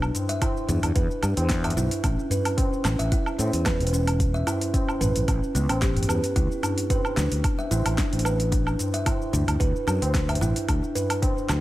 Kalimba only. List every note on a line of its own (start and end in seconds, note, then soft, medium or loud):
0.29 0.41 E5 medium
0.42 0.67 E4 medium
0.69 0.95 D4 medium
0.96 1.04 B4 medium
1.23 1.37 D4 medium
1.65 1.76 E5 medium
1.77 2.03 E4 loud
2.04 2.30 C#4 medium
2.31 2.39 B4 medium
2.58 2.72 C#4 medium
2.99 3.11 E5 medium
3.12 3.38 E4 loud
3.39 3.65 C#4 medium
3.66 3.74 B4 medium
3.93 4.07 C#4 medium
4.34 4.46 E5 medium
4.47 4.73 E4 medium
4.74 5.00 C#4 medium
5.01 5.09 B4 medium
5.28 5.42 C#4 medium
5.55 5.69 B3 medium
5.70 5.81 C#4 medium
5.82 5.95 G4 loud
6.09 6.23 B4 medium
6.36 6.62 E4 medium
6.63 6.89 D4 medium
6.90 6.98 B4 medium
7.17 7.31 D4 medium
7.59 7.71 E5 medium
7.71 7.97 E4 loud
7.98 8.24 D4 medium
8.25 8.34 B4 medium
8.52 8.66 D4 medium
8.94 9.06 E5 medium
9.06 9.32 E4 medium
9.33 9.59 D4 medium
9.60 9.69 B4 medium
9.87 10.01 D4 medium
10.29 10.41 E5 medium
10.41 10.67 E4 loud
10.69 10.94 D4 medium
10.95 11.04 B4 medium
11.22 11.36 D4 medium